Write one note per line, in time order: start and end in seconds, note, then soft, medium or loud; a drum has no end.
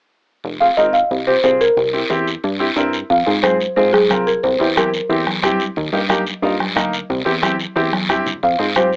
0.44 0.71 F1 medium
0.44 long guiro medium
0.60 0.66 C4 medium
0.60 0.67 F4 soft
0.60 0.67 G#4 medium
0.60 0.68 F5 medium
0.77 1.04 G#1 loud
0.77 0.95 C4 medium
0.77 0.95 F4 medium
0.77 0.95 A#4 medium
0.77 0.94 D#5 medium
0.77 short guiro medium
0.93 1.28 F5 medium
0.93 short guiro medium
1.11 1.37 C2 medium
1.11 long guiro medium
1.27 1.33 C4 medium
1.27 1.33 F4 medium
1.27 1.33 G4 medium
1.27 1.43 C5 medium
1.44 1.70 C2 medium
1.44 1.61 C4 medium
1.44 1.61 F4 medium
1.44 1.61 G#4 medium
1.44 1.61 C5 medium
1.44 short guiro medium
1.61 1.92 A#4 medium
1.61 short guiro medium
1.77 2.04 C2 medium
1.77 long guiro medium
1.93 1.99 C4 medium
1.93 2.00 E4 medium
1.93 2.00 G4 medium
2.10 2.37 E2 medium
2.10 2.28 C4 medium
2.10 2.28 E4 medium
2.10 2.28 G4 medium
2.10 short guiro medium
2.27 short guiro medium
2.44 2.70 G2 medium
2.44 long guiro medium
2.59 2.66 C4 medium
2.59 2.66 E4 medium
2.59 2.66 G4 medium
2.76 3.03 G2 medium
2.76 2.94 C4 medium
2.76 2.94 E4 medium
2.76 2.94 A#4 medium
2.76 short guiro medium
2.93 short guiro medium
3.10 3.23 F2 medium
3.10 3.44 F5 medium
3.10 bombo low medium
3.10 long guiro medium
3.26 3.67 G#2 medium
3.26 3.32 C4 medium
3.26 3.32 F4 medium
3.26 3.33 G#4 medium
3.42 3.55 C4 medium
3.42 3.55 F4 medium
3.42 3.55 G#4 medium
3.42 3.74 C5 medium
3.42 bombo rim medium
3.42 high conga medium
3.42 short guiro medium
3.60 short guiro medium
3.76 4.12 G#2 medium
3.76 3.88 C4 medium
3.76 3.89 F4 medium
3.76 3.89 G#4 medium
3.76 3.94 C5 medium
3.76 long guiro medium
3.93 4.27 G#4 medium
3.93 bombo rim medium
3.93 high conga medium
4.10 4.37 C2 medium
4.10 4.27 C4 medium
4.10 4.28 F4 medium
4.10 4.28 A#4 medium
4.10 bombo low medium
4.10 bombo rim medium
4.10 high conga medium
4.10 short guiro medium
4.27 4.42 A#4 medium
4.27 short guiro medium
4.43 4.57 C2 medium
4.43 4.78 C5 medium
4.43 bombo low medium
4.43 long guiro medium
4.59 5.00 E2 medium
4.59 4.65 C4 medium
4.59 4.66 E4 medium
4.59 4.66 G4 medium
4.76 4.88 C4 medium
4.76 4.88 E4 medium
4.76 4.88 G4 medium
4.76 5.56 A#4 medium
4.76 bombo rim medium
4.76 high conga medium
4.76 short guiro medium
4.94 short guiro medium
5.09 5.45 E2 medium
5.09 5.21 C4 medium
5.09 5.22 E4 medium
5.09 5.22 G4 medium
5.09 long guiro medium
5.27 bombo rim medium
5.27 high conga medium
5.43 5.70 G2 medium
5.43 5.60 C4 medium
5.43 5.61 E4 medium
5.43 5.61 G4 medium
5.43 bombo low medium
5.43 bombo rim medium
5.43 high conga medium
5.43 short guiro medium
5.60 short guiro medium
5.76 5.90 D#2 medium
5.76 bombo low medium
5.76 long guiro medium
5.93 6.33 G2 medium
5.93 5.99 A#3 medium
5.93 5.99 D#4 medium
5.93 5.99 G4 medium
6.09 6.21 A#3 medium
6.09 6.21 D#4 medium
6.09 6.22 G4 medium
6.09 bombo rim medium
6.09 high conga medium
6.09 short guiro medium
6.27 short guiro medium
6.42 6.78 G2 medium
6.42 6.54 A#3 medium
6.42 6.55 D#4 medium
6.42 6.55 F4 medium
6.42 long guiro medium
6.60 bombo rim medium
6.60 high conga medium
6.76 7.03 D2 medium
6.76 6.93 A#3 medium
6.76 6.94 D#4 medium
6.76 6.94 A#4 medium
6.76 bombo low medium
6.76 bombo rim medium
6.76 high conga medium
6.76 short guiro medium
6.93 short guiro medium
7.10 7.23 C2 loud
7.10 bombo low medium
7.10 long guiro medium
7.25 7.66 E2 medium
7.25 7.32 C4 medium
7.25 7.32 E4 medium
7.25 7.32 G4 medium
7.42 7.54 C4 medium
7.42 7.55 E4 medium
7.42 7.55 G4 medium
7.42 bombo rim medium
7.42 high conga medium
7.42 short guiro medium
7.60 short guiro medium
7.76 8.11 E2 medium
7.76 7.88 C4 medium
7.76 7.88 E4 medium
7.76 7.88 G4 medium
7.76 long guiro medium
7.93 bombo rim medium
7.93 high conga medium
8.09 8.36 G2 medium
8.09 8.27 C4 medium
8.09 8.27 E4 medium
8.09 8.27 G4 medium
8.09 bombo low medium
8.09 bombo rim medium
8.09 short guiro medium
8.26 low conga medium
8.26 short guiro medium
8.43 8.56 F2 loud
8.43 8.78 F5 medium
8.43 bombo low medium
8.43 long guiro medium
8.58 8.96 G#2 medium
8.58 8.65 C4 medium
8.58 8.65 F4 medium
8.58 8.65 G#4 medium
8.76 8.88 C4 medium
8.76 8.88 F4 medium
8.76 8.88 G4 medium
8.76 8.96 C5 medium
8.76 bombo rim medium
8.76 high conga medium
8.76 short guiro medium
8.93 short guiro medium